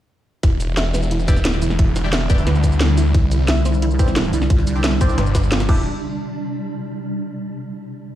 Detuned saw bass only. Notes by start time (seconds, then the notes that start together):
0.43 E1
0.77 E1
1.36 D#1
1.62 E1
1.96 E1
2.47 D2
3.15 C2
5.18 G1
5.69 E1